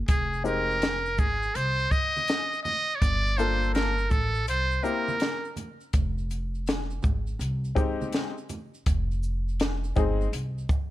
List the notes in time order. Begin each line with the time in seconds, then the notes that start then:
0.08 F1 G#4, kick, closed hi-hat, shaker
0.33 shaker
0.44 G#3 C4 D#4 G4 A#4, shaker
0.70 shaker
0.82 snare, closed hi-hat, shaker
1.06 shaker
1.18 G#1 G#4, kick, low conga, shaker
1.42 shaker
1.55 C2 C5, closed hi-hat, shaker
1.79 shaker
1.91 D#5, kick, shaker
2.17 high conga, shaker
2.28 snare, closed hi-hat, shaker
2.53 shaker
2.63 D#5, high conga, low conga, shaker
2.90 shaker
2.96 C#5
3.00 G1 D5, kick, closed hi-hat, shaker
3.26 shaker
3.37 A#3 D4 F4 A4 C5, closed hi-hat, shaker
3.62 shaker
3.74 A#4, snare, closed hi-hat, shaker
3.98 shaker
4.10 A1 A4, kick, low conga, shaker
4.35 shaker
4.47 C2 C5, closed hi-hat, shaker
4.71 shaker
4.83 A#3 C4 E4 G4 A#4, shaker
4.85 shaker
5.08 high conga, shaker
5.20 snare, closed hi-hat, shaker
5.44 shaker
5.56 closed hi-hat, high conga, low conga, shaker
5.80 shaker
5.93 F1, kick, closed hi-hat, shaker
6.18 shaker
6.30 closed hi-hat, shaker
6.55 shaker
6.67 snare, closed hi-hat, shaker
6.90 shaker
7.03 G#1, kick, low conga, shaker
7.27 shaker
7.39 C2, closed hi-hat, shaker
7.64 shaker
7.75 G#3 C4 D#4 G4, kick, shaker
8.02 high conga, shaker
8.13 snare, closed hi-hat, shaker
8.38 shaker
8.49 closed hi-hat, high conga, low conga, shaker
8.74 shaker
8.86 F1, kick, closed hi-hat, shaker
9.11 shaker
9.23 shaker
9.48 shaker
9.60 snare, closed hi-hat, shaker
9.84 shaker
9.96 G1 G#3 C4 D#4 G#4, kick, low conga, shaker
10.21 shaker
10.33 C2, closed hi-hat, shaker
10.58 shaker
10.69 kick, shaker